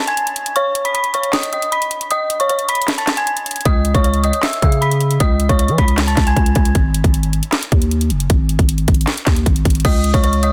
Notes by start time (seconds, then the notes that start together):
0.07 G#5 G#6, closed hi-hat
0.17 closed hi-hat
0.27 closed hi-hat
0.36 closed hi-hat
0.46 closed hi-hat
0.56 C#5 C#6, closed hi-hat
0.75 closed hi-hat
0.85 B5 B6, closed hi-hat
0.94 B5 B6, closed hi-hat
1.04 closed hi-hat
1.14 C#5 C#6, closed hi-hat
1.23 closed hi-hat
1.33 D#5 D#6, snare, clap, closed hi-hat
1.43 closed hi-hat
1.53 D#5 D#6, closed hi-hat
1.62 closed hi-hat
1.72 B5 B6, closed hi-hat
1.82 closed hi-hat
1.91 closed hi-hat
2.01 closed hi-hat
2.11 D#5 D#6, closed hi-hat
2.30 closed hi-hat
2.40 C#5 C#6, closed hi-hat
2.49 C#5 C#6, closed hi-hat
2.59 closed hi-hat
2.69 B5 B6, closed hi-hat, open hi-hat
2.75 closed hi-hat
2.82 closed hi-hat
2.88 snare, clap, closed hi-hat
2.98 A5 A6, closed hi-hat
3.07 snare, clap, closed hi-hat
3.17 G#5 G#6, closed hi-hat
3.27 closed hi-hat
3.37 closed hi-hat
3.46 closed hi-hat
3.51 closed hi-hat
3.56 closed hi-hat
3.61 closed hi-hat
3.65 C#2 D#5 D#6, kick, closed hi-hat
3.85 closed hi-hat
3.94 C#2 C#5 C#6, kick, closed hi-hat
4.04 C#5 C#6, closed hi-hat
4.14 closed hi-hat
4.24 D#5 D#6, closed hi-hat
4.33 closed hi-hat
4.43 E5 E6, snare, clap, closed hi-hat
4.53 closed hi-hat
4.62 C#3 E5 E6, kick, closed hi-hat
4.72 closed hi-hat
4.81 B5 B6, closed hi-hat
4.91 closed hi-hat
5.01 closed hi-hat
5.11 closed hi-hat
5.20 C#2 D#5 D#6, kick, closed hi-hat
5.40 closed hi-hat
5.49 C#2 C#5 C#6, kick, closed hi-hat
5.59 C#5 C#6, closed hi-hat
5.68 E3, closed hi-hat
5.78 C#2 B5 B6, kick, closed hi-hat, open hi-hat
5.88 closed hi-hat
5.98 snare, clap, closed hi-hat
6.07 A5 A6, closed hi-hat
6.17 C#2, kick, snare, clap, closed hi-hat
6.27 G#5 G#6, closed hi-hat
6.36 C#2, kick, closed hi-hat
6.46 closed hi-hat
6.55 C#2, kick, closed hi-hat
6.65 closed hi-hat
6.75 G#1, kick, closed hi-hat
6.94 closed hi-hat
7.04 G#1, kick, closed hi-hat
7.14 closed hi-hat
7.23 closed hi-hat
7.33 closed hi-hat
7.43 closed hi-hat
7.52 snare, clap, closed hi-hat
7.63 closed hi-hat
7.72 D#2, kick, closed hi-hat
7.82 closed hi-hat
7.91 closed hi-hat
8.01 closed hi-hat
8.10 F#1, closed hi-hat
8.20 closed hi-hat
8.30 G#1, kick, closed hi-hat
8.49 closed hi-hat
8.59 G#1, kick, closed hi-hat
8.69 closed hi-hat
8.78 closed hi-hat
8.88 G#1, kick, closed hi-hat, open hi-hat
8.94 closed hi-hat
9.01 closed hi-hat
9.07 snare, clap, closed hi-hat
9.17 closed hi-hat
9.26 D#2, kick, snare, clap, closed hi-hat
9.36 closed hi-hat
9.46 G#1, kick, closed hi-hat
9.56 closed hi-hat
9.65 G#1, kick, closed hi-hat
9.70 closed hi-hat
9.75 closed hi-hat
9.80 closed hi-hat
9.85 C#2 D#5 D#6, kick, closed hi-hat, crash
10.04 closed hi-hat
10.14 C#2 C#5 C#6, kick, closed hi-hat
10.24 C#5 C#6, closed hi-hat
10.33 closed hi-hat
10.43 D#5 D#6, closed hi-hat